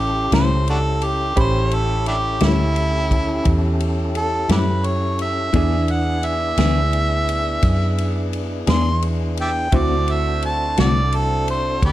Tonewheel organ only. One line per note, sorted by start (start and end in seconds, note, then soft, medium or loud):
0.00 1.34 C#4 medium
0.00 1.34 E4 medium
0.00 1.34 G4 medium
0.00 1.34 A4 medium
1.37 5.51 C#4 medium
1.37 5.51 E4 medium
1.37 5.51 G4 medium
1.37 5.51 A4 medium
5.53 9.68 B3 medium
5.53 9.68 D4 medium
5.53 9.68 E4 medium
5.53 9.69 G#4 medium
9.74 11.92 C4 medium
9.74 11.92 D4 medium
9.74 11.92 F#4 medium
9.74 11.92 A4 medium